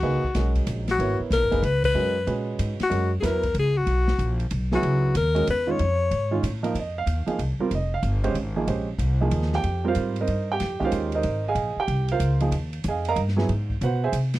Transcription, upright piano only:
0.03 0.22 A#3 medium
0.03 0.22 D#4 medium
0.03 0.22 G#4 medium
0.03 0.22 B4 medium
0.35 0.84 G#3 medium
0.35 0.84 C#4 medium
0.35 0.84 F#4 medium
0.35 0.84 A#4 medium
0.99 1.48 B3 medium
0.99 1.48 E4 medium
0.99 1.48 A#4 medium
0.99 1.48 C#5 medium
1.51 1.62 A#3 medium
1.51 1.62 D#4 medium
1.51 1.62 G#4 medium
1.51 1.62 B4 medium
1.95 2.14 G#3 medium
1.95 2.14 C#4 medium
1.95 2.14 F#4 medium
1.95 2.14 A#4 medium
2.27 2.76 G#3 medium
2.27 2.76 C#4 medium
2.27 2.76 F#4 medium
2.27 2.76 B4 medium
2.90 3.09 G#3 medium
2.90 3.09 C#4 medium
2.90 3.09 F#4 medium
2.90 3.09 A#4 medium
3.22 3.41 F#3 medium
3.22 3.41 B3 medium
3.22 3.41 E4 medium
3.22 3.42 B4 medium
4.73 5.13 F#3 medium
4.73 5.13 B3 medium
4.73 5.13 E4 medium
4.73 5.13 G#4 medium
5.35 5.46 G#3 medium
5.35 5.46 C#4 medium
5.35 5.46 F#4 medium
5.35 5.46 A#4 medium
5.67 5.78 D#3 medium
5.67 5.78 G#3 medium
5.67 5.78 C#4 medium
5.67 5.78 F4 medium
6.31 6.42 D#3 medium
6.31 6.42 G#3 medium
6.31 6.42 C#4 medium
6.31 6.42 F4 medium
6.63 6.74 F3 medium
6.63 6.74 A#3 medium
6.63 6.74 D#4 medium
6.63 6.74 A#4 medium
6.79 6.97 D#5 medium
6.98 7.38 F5 medium
7.26 7.37 F3 medium
7.26 7.38 A#3 medium
7.26 7.38 D#4 medium
7.26 7.38 G#4 medium
7.60 7.70 G3 medium
7.60 7.70 C4 medium
7.60 7.70 F4 medium
7.60 7.70 A#4 medium
7.75 7.93 D#5 medium
7.94 8.34 F5 medium
8.24 8.34 G#3 medium
8.24 8.34 C#4 medium
8.24 8.35 G4 medium
8.24 8.34 C5 medium
8.56 8.66 F3 medium
8.56 8.67 A#3 medium
8.56 8.67 D#4 medium
8.56 8.66 G#4 medium
8.67 8.86 G#3 medium
8.67 8.86 C#4 medium
8.67 8.86 G4 medium
8.67 8.86 C5 medium
9.21 9.62 F3 medium
9.21 9.62 A#3 medium
9.21 9.62 D#4 medium
9.21 9.62 G#4 medium
9.55 9.83 G4 medium
9.55 9.84 G5 medium
9.84 10.26 G3 medium
9.84 10.26 C4 medium
9.84 9.87 F4 medium
9.84 10.16 F4 medium
9.84 9.87 A#4 medium
9.84 10.16 F5 medium
9.88 10.16 A#4 medium
9.88 10.16 C5 medium
10.21 10.49 D#4 medium
10.21 10.49 A#4 medium
10.21 10.49 C5 medium
10.21 10.49 D#5 medium
10.52 10.79 G4 medium
10.52 10.80 G5 medium
10.80 11.22 D#3 medium
10.80 11.21 G#3 medium
10.80 11.22 C#4 medium
10.80 11.22 G4 medium
10.84 11.12 F4 medium
10.84 11.13 A#4 medium
10.84 11.13 C5 medium
10.84 11.13 F5 medium
11.15 11.44 D#4 medium
11.15 11.44 A#4 medium
11.15 11.44 C5 medium
11.15 11.44 D#5 medium
11.48 11.77 G#4 medium
11.48 11.77 D#5 medium
11.48 11.77 F5 medium
11.48 11.77 G#5 loud
11.80 12.08 G4 medium
11.80 12.08 G5 medium
12.12 12.41 F4 medium
12.12 12.40 A#4 medium
12.12 12.40 C5 medium
12.12 12.40 F5 medium
12.41 12.51 F3 medium
12.41 12.52 A#3 medium
12.41 12.52 D#4 medium
12.41 12.52 G#4 medium
12.88 13.07 G#4 medium
12.88 13.07 D#5 medium
12.88 13.07 F5 medium
12.88 13.07 G#5 medium
13.09 13.18 A#4 medium
13.09 13.18 D#5 medium
13.09 13.18 F5 medium
13.09 13.18 A#5 loud
13.36 13.47 F#3 medium
13.36 13.48 B3 medium
13.36 13.48 E4 medium
13.36 13.48 G#4 medium
13.83 14.03 F#4 medium
13.83 14.03 B4 medium
13.83 14.03 C5 medium
13.83 14.02 F#5 medium
14.04 14.14 G#4 medium
14.04 14.14 C5 medium
14.04 14.14 E5 medium
14.04 14.14 G#5 medium

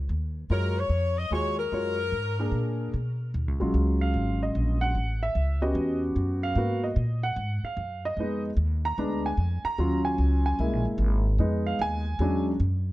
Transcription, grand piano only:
0.50 0.74 G#3 medium
0.50 0.74 F4 medium
0.50 0.75 F#4 medium
0.50 0.75 C#5 medium
1.31 1.55 G#3 medium
1.31 1.55 F4 medium
1.31 1.56 F#4 soft
1.31 1.56 G#4 medium
1.72 1.96 G#3 soft
1.72 1.96 F4 soft
1.72 1.97 F#4 soft
1.72 1.97 C#5 medium
2.39 2.91 A#3 medium
2.39 2.91 D4 medium
2.39 2.92 G#4 soft
2.39 2.92 A#4 medium
3.60 4.92 F#3 soft
3.60 4.92 G#3 soft
3.60 4.92 C#4 soft
3.60 4.92 F4 soft
4.01 4.39 F5 medium
4.43 4.79 D#5 medium
4.81 5.19 F#5 medium
5.23 5.60 E5 medium
5.62 6.53 B3 soft
5.62 6.53 C#4 soft
5.62 6.53 F#4 medium
5.62 6.53 G4 soft
5.62 6.00 D#5 medium
6.43 6.80 F5 medium
6.56 6.87 A#3 soft
6.56 6.87 B3 soft
6.56 6.87 F#4 medium
6.84 7.21 D#5 medium
7.23 7.61 F#5 medium
7.65 8.02 F5 medium
8.05 8.42 D#5 medium
8.19 8.49 G#3 soft
8.19 8.49 B3 soft
8.19 8.49 D#4 medium
8.85 9.22 A#5 medium
8.98 9.28 G#3 soft
8.98 9.28 B3 soft
8.98 9.29 D4 medium
9.26 9.63 G#5 medium
9.65 10.02 A#5 medium
9.78 10.55 F#3 soft
9.78 10.55 C#4 soft
9.78 10.56 F4 medium
10.05 10.42 G#5 medium
10.46 10.83 G#5 medium
10.59 11.22 G#3 soft
10.59 11.22 A#3 soft
10.59 11.23 E4 medium
11.39 12.02 G#3 medium
11.39 12.03 B3 soft
11.39 12.03 D#4 medium
11.66 11.80 F5 medium
11.82 12.43 G#5 medium
12.20 12.50 F#3 medium
12.20 12.51 G#3 soft
12.20 12.51 C#4 soft
12.20 12.51 D4 medium

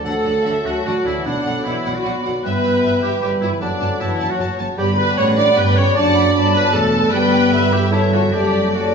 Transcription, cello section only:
0.04 0.12 D3 soft
0.25 0.33 D3 soft
0.45 0.53 D3 soft
0.65 0.73 D3 soft
0.86 0.94 D3 soft
1.05 1.13 D3 soft
1.26 1.34 B2 soft
1.44 1.52 B2 soft
1.65 1.73 B2 soft
1.85 1.93 B2 soft
2.06 2.14 B2 soft
2.25 2.33 B2 soft
2.45 2.53 G2 medium
2.65 2.73 G2 soft
2.83 2.91 G2 soft
3.03 3.11 G2 soft
3.22 3.30 G2 medium
3.42 3.50 G2 medium
3.62 3.70 F#2 medium
3.81 3.89 F#2 soft
4.01 4.09 F#2 medium
4.20 4.28 F#2 medium
4.39 4.47 F#2 medium
4.59 4.67 F#2 medium
4.78 5.15 G2 medium
5.17 5.56 A2 medium
5.57 5.95 G2 medium
5.96 6.34 F#2 medium
6.35 6.73 G2 medium
6.74 7.12 E2 medium
7.13 8.30 G2 medium
8.34 8.95 F#2 medium

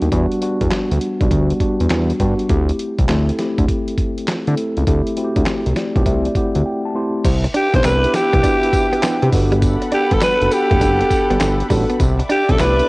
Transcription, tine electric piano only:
0.00 0.12 G3 medium
0.00 0.12 B3 medium
0.00 0.13 D4 medium
0.00 0.13 F#4 medium
0.12 0.39 G3 medium
0.12 0.39 B3 medium
0.12 0.39 D4 medium
0.12 0.39 F#4 loud
0.41 1.06 G3 medium
0.41 1.06 B3 medium
0.41 1.06 D4 medium
0.41 1.07 F#4 loud
1.21 1.56 G3 medium
1.21 1.56 B3 medium
1.21 1.56 D4 medium
1.21 1.56 F#4 loud
1.60 2.14 G3 medium
1.60 2.14 B3 medium
1.60 2.14 D4 medium
1.60 2.14 F#4 medium
2.20 2.46 G3 medium
2.20 2.47 B3 medium
2.20 2.47 D4 medium
2.20 2.47 F#4 loud
2.49 3.03 A3 medium
2.49 3.03 C4 medium
2.49 3.03 E4 medium
2.49 3.03 G4 loud
3.09 3.36 A3 medium
3.09 3.36 C4 medium
3.09 3.36 E4 medium
3.09 3.36 A4 medium
3.38 4.27 A3 medium
3.38 4.27 C4 medium
3.38 4.28 E4 medium
3.38 4.28 G4 medium
4.47 4.83 A3 medium
4.47 4.83 C4 medium
4.47 4.83 E4 medium
4.47 4.83 A4 loud
4.87 5.14 A3 medium
4.87 5.14 C4 medium
4.87 5.14 E4 medium
4.87 5.14 G4 loud
5.17 5.81 A3 medium
5.17 5.81 C4 medium
5.17 5.82 E4 medium
5.17 5.26 F#4 medium
5.24 5.85 G4 loud
5.77 6.04 D5 medium
5.96 6.31 A3 loud
5.96 6.31 C4 medium
5.96 6.31 E4 medium
5.96 6.32 G4 loud
6.06 6.24 E5 medium
6.26 6.35 D5 medium
6.36 6.89 A3 medium
6.36 6.89 C4 medium
6.36 6.89 E4 medium
6.36 6.90 G4 medium
6.36 6.64 F#5 medium
6.66 6.84 G5 medium
6.85 6.95 A5 medium
6.95 7.22 A3 medium
6.95 7.22 C4 medium
6.95 7.22 E4 medium
6.95 7.22 G4 medium
6.95 7.23 C6 medium
7.74 7.98 B3 medium
7.74 7.98 D4 medium
7.74 7.98 E4 medium
7.74 7.98 G4 medium
8.04 8.39 B3 medium
8.04 8.39 D4 medium
8.04 8.39 E4 medium
8.04 8.40 G4 medium
8.43 8.60 B3 medium
8.43 8.60 D4 medium
8.43 8.61 E4 medium
8.43 8.61 F#4 medium
8.63 8.98 B3 medium
8.63 8.99 D4 medium
8.63 8.99 E4 medium
8.63 8.99 G4 medium
9.03 9.32 B3 medium
9.03 9.32 D4 medium
9.03 9.33 E4 medium
9.03 9.33 G4 loud
9.33 10.22 B3 loud
9.33 10.22 D4 medium
9.33 10.22 F#4 medium
9.33 10.22 A4 loud
10.41 10.77 B3 medium
10.41 10.77 D4 medium
10.41 10.77 F#4 medium
10.41 10.77 A4 loud
10.81 11.61 B3 medium
10.81 11.61 D4 medium
10.81 11.62 A4 loud
10.81 11.62 F#5 medium
11.70 12.00 B3 medium
11.70 12.00 D4 medium
11.70 12.00 F#4 medium
11.70 12.01 A4 loud
12.49 12.73 B3 medium
12.49 12.73 D4 medium
12.49 12.74 E4 medium
12.49 12.74 G4 medium
12.79 12.89 B3 medium
12.79 12.89 D4 medium
12.79 12.89 E4 medium
12.79 12.89 A4 medium

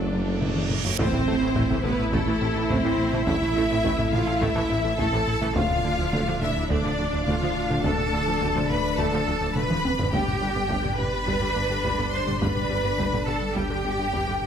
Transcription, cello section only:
0.00 0.74 F#2 medium
0.99 1.80 C4 loud
1.84 2.12 B3 loud
2.13 2.69 A3 loud
2.70 3.26 C4 loud
3.27 4.11 E4 loud
4.13 4.41 F4 loud
4.42 4.99 E4 loud
4.99 5.55 A4 loud
5.56 6.41 F4 loud
6.41 6.70 E4 loud
6.70 7.27 D4 loud
7.27 7.84 F4 loud
7.84 8.68 A4 loud
8.70 8.99 B4 loud
8.99 9.56 A4 loud
9.55 10.11 B4 loud
10.12 10.96 G4 loud
10.98 12.10 B4 loud
12.12 12.40 C5 loud
12.41 13.25 B4 loud
13.27 13.55 A4 medium
13.55 14.47 G4 loud

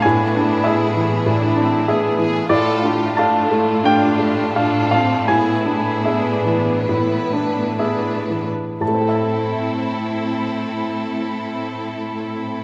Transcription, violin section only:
0.04 1.25 E4 soft
0.04 1.87 G#4 soft
1.27 1.87 E4 soft
1.89 2.17 G#4 soft
2.18 2.49 G#4 medium
2.51 3.17 F4 soft
2.51 2.84 A4 medium
2.85 3.19 G4 soft
3.19 3.84 F4 soft
3.85 4.54 D4 soft
3.85 4.19 F4 soft
4.20 4.55 G4 soft
4.55 5.27 D4 soft
4.55 5.29 A4 soft
5.29 6.87 E4 soft
5.29 5.64 G#4 soft
5.66 6.86 G#4 soft
6.88 7.32 E4 soft
6.88 7.79 B4 soft
7.34 7.80 D4 soft
7.80 8.50 E4 soft
7.80 8.48 B4 soft
8.82 12.64 E4 soft
8.82 12.64 A4 soft

